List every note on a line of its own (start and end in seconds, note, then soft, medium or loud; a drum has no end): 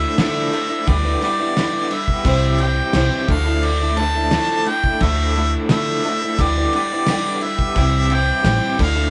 0.00 0.16 D3 medium
0.00 0.16 F3 medium
0.00 0.17 A3 medium
0.00 0.18 D4 medium
0.00 0.20 E4 medium
0.00 0.19 A4 medium
0.00 0.15 E5 loud
0.17 0.70 D3 medium
0.17 0.46 D3 medium
0.17 0.50 F3 medium
0.17 0.36 A3 medium
0.17 0.35 D4 loud
0.17 0.34 E4 medium
0.17 0.54 A4 loud
0.17 0.90 E5 medium
0.17 snare loud
0.17 crash medium
0.34 0.51 A3 medium
0.34 0.52 D4 medium
0.34 0.54 E4 medium
0.51 0.85 F3 medium
0.51 0.72 A3 medium
0.51 0.71 D4 medium
0.51 0.69 E4 medium
0.51 crash medium
0.56 0.67 A4 medium
0.68 0.88 E4 medium
0.68 0.86 A4 medium
0.72 0.87 A3 medium
0.72 0.86 D4 medium
0.86 1.15 D2 medium
0.86 1.38 D3 medium
0.86 1.21 E3 medium
0.86 1.05 G3 medium
0.86 1.04 B3 medium
0.86 1.05 D4 medium
0.86 1.03 E4 loud
0.86 1.03 B4 medium
0.86 1.23 D5 medium
0.86 kick loud
0.86 crash medium
1.03 1.22 G3 medium
1.03 1.22 B3 medium
1.03 1.21 D4 medium
1.03 1.25 E4 medium
1.03 1.22 B4 medium
1.21 1.56 E3 medium
1.21 1.57 G3 medium
1.21 1.57 B3 loud
1.21 1.39 D4 medium
1.21 1.59 E4 medium
1.21 1.38 B4 medium
1.21 1.95 D5 medium
1.21 crash medium
1.39 1.56 G3 medium
1.39 1.57 D4 medium
1.39 1.57 E4 medium
1.39 1.56 B4 medium
1.56 2.08 D3 medium
1.56 1.91 E3 medium
1.56 1.75 G3 loud
1.56 1.73 B3 medium
1.56 1.91 D4 medium
1.56 1.72 E4 loud
1.56 1.92 B4 medium
1.56 snare loud
1.56 crash medium
1.72 1.90 G3 medium
1.72 1.91 B3 medium
1.72 1.91 E4 medium
1.90 2.25 G3 medium
1.90 2.25 D4 medium
1.90 2.26 E4 medium
1.90 2.27 B4 medium
1.90 2.63 E5 loud
1.90 muted clean electric guitar stroke soft
1.90 crash medium
2.06 2.24 G3 medium
2.06 2.24 B3 medium
2.06 2.26 E4 medium
2.06 kick medium
2.24 2.80 C2 loud
2.24 2.92 C3 medium
2.24 2.58 E3 loud
2.24 2.59 G3 loud
2.24 2.58 C4 medium
2.24 2.60 E4 loud
2.24 2.61 G4 loud
2.24 2.61 C5 medium
2.24 kick loud
2.24 crash medium
2.58 2.94 E3 medium
2.58 2.95 G3 medium
2.58 2.93 C4 medium
2.58 2.96 E4 medium
2.58 2.96 G4 medium
2.58 2.95 C5 medium
2.58 3.34 G5 medium
2.58 crash medium
2.93 3.08 C2 medium
2.93 3.26 C3 medium
2.93 3.28 E3 loud
2.93 3.12 G3 medium
2.93 3.29 C4 medium
2.93 3.12 E4 medium
2.93 3.09 G4 medium
2.93 3.30 C5 medium
2.93 snare loud
2.93 crash loud
3.10 3.28 G3 medium
3.10 3.30 E4 medium
3.10 3.26 G4 medium
3.27 4.37 D2 loud
3.27 3.80 D3 medium
3.27 3.80 F3 loud
3.27 3.47 A3 loud
3.27 3.45 D4 loud
3.27 3.44 E4 loud
3.27 kick loud
3.27 crash medium
3.31 3.44 A4 medium
3.31 3.67 F5 medium
3.45 3.81 A3 medium
3.45 3.80 D4 medium
3.45 3.79 E4 medium
3.45 3.79 A4 medium
3.63 4.00 D5 loud
3.63 crash medium
3.79 3.96 A3 medium
3.79 3.97 D4 medium
3.79 3.99 E4 medium
3.79 3.98 A4 medium
3.96 4.31 F3 medium
3.96 4.32 A3 medium
3.96 4.33 D4 loud
3.96 4.34 E4 medium
3.96 4.13 A4 medium
3.96 4.70 A5 loud
3.96 crash medium
4.15 4.30 A3 soft
4.15 4.30 D4 medium
4.15 4.31 E4 medium
4.15 4.32 A4 medium
4.31 4.83 D3 medium
4.31 4.66 F3 medium
4.31 4.51 A3 medium
4.31 4.50 D4 medium
4.31 4.48 E4 loud
4.31 4.67 A4 medium
4.31 snare loud
4.31 crash medium
4.49 4.67 A3 medium
4.49 4.67 D4 medium
4.49 4.68 E4 medium
4.65 5.01 A3 medium
4.65 5.01 D4 medium
4.65 5.01 E4 medium
4.65 5.02 A4 medium
4.65 5.04 G5 loud
4.65 muted clean electric guitar stroke medium
4.65 crash medium
4.83 5.00 D4 medium
4.83 5.03 E4 medium
4.83 kick medium
4.87 5.01 A3 soft
5.00 5.55 D2 loud
5.00 5.69 D3 medium
5.00 5.34 F3 medium
5.00 5.35 A3 medium
5.00 5.36 D4 loud
5.00 5.38 E4 medium
5.00 5.37 A4 medium
5.00 5.53 E5 loud
5.00 kick loud
5.00 crash medium
5.35 5.70 F3 medium
5.35 5.70 A3 medium
5.35 5.71 D4 medium
5.35 5.73 E4 medium
5.35 crash medium
5.39 5.70 A4 medium
5.69 6.22 D3 medium
5.69 5.97 D3 medium
5.69 6.02 F3 medium
5.69 5.89 A3 loud
5.69 5.87 D4 loud
5.69 5.86 E4 loud
5.69 6.05 A4 medium
5.69 6.43 E5 loud
5.69 snare loud
5.69 crash medium
5.86 6.04 D4 medium
5.86 6.06 E4 medium
5.90 6.03 A3 medium
6.03 6.36 F3 medium
6.03 6.22 A3 medium
6.03 6.21 D4 medium
6.03 6.20 E4 medium
6.03 crash medium
6.08 6.20 A4 medium
6.20 6.38 A3 medium
6.20 6.37 D4 medium
6.20 6.41 E4 medium
6.20 6.39 A4 medium
6.39 6.66 D2 loud
6.39 6.90 D3 medium
6.39 6.73 E3 medium
6.39 6.57 G3 medium
6.39 6.55 B3 loud
6.39 6.57 D4 medium
6.39 6.57 E4 medium
6.39 6.54 G4 loud
6.39 6.56 B4 medium
6.39 6.75 D5 loud
6.39 kick loud
6.39 crash medium
6.55 6.73 G3 medium
6.55 6.75 B3 medium
6.55 6.74 D4 medium
6.55 6.74 E4 medium
6.55 6.76 G4 medium
6.55 6.74 B4 medium
6.73 7.08 E3 medium
6.73 7.07 G3 medium
6.73 7.08 B3 medium
6.73 6.91 D4 medium
6.73 6.92 E4 medium
6.73 7.09 G4 medium
6.73 7.46 D5 loud
6.73 crash medium
6.77 6.91 B4 medium
6.93 7.09 G3 soft
6.93 7.10 D4 medium
6.93 7.09 E4 medium
6.93 7.09 B4 medium
7.07 7.59 D3 medium
7.07 7.41 E3 loud
7.07 7.26 G3 loud
7.07 7.25 B3 medium
7.07 7.23 G4 loud
7.07 snare loud
7.07 crash medium
7.11 7.42 D4 medium
7.11 7.43 E4 medium
7.11 7.44 B4 medium
7.24 7.40 G3 medium
7.24 7.40 B3 medium
7.24 7.41 G4 medium
7.41 7.76 G3 medium
7.41 7.77 D4 medium
7.41 7.77 E4 medium
7.41 8.16 E5 loud
7.41 muted clean electric guitar stroke medium
7.41 crash medium
7.45 7.78 B4 medium
7.58 7.75 G3 medium
7.58 7.74 B3 medium
7.58 7.74 G4 medium
7.58 kick medium
7.74 8.30 C2 loud
7.74 8.42 C3 medium
7.74 8.09 E3 medium
7.74 8.09 G3 medium
7.74 8.11 C4 medium
7.74 8.11 E4 loud
7.74 8.11 G4 medium
7.74 8.12 C5 medium
7.74 kick loud
7.74 crash medium
8.09 8.43 E3 medium
8.09 8.44 G3 medium
8.09 8.45 C4 medium
8.09 8.45 E4 medium
8.09 8.45 G4 medium
8.09 crash medium
8.13 8.45 C5 medium
8.13 8.81 G5 loud
8.43 8.58 A1 loud
8.43 8.77 C3 medium
8.43 8.78 E3 medium
8.43 8.62 G3 medium
8.43 8.79 C4 loud
8.43 8.62 E4 loud
8.43 8.60 G4 medium
8.43 8.80 C5 loud
8.43 snare loud
8.43 crash medium
8.61 8.78 G3 medium
8.61 8.80 E4 medium
8.61 8.77 G4 medium
8.78 9.10 D2 loud
8.78 9.10 D3 loud
8.78 9.10 F3 medium
8.78 8.97 A3 medium
8.78 8.96 D4 loud
8.78 8.94 E4 loud
8.78 8.93 A4 medium
8.78 kick loud
8.78 crash loud
8.83 9.10 F5 medium
8.95 9.10 A3 medium
8.95 9.10 D4 medium
8.95 9.10 E4 medium
8.95 9.10 A4 medium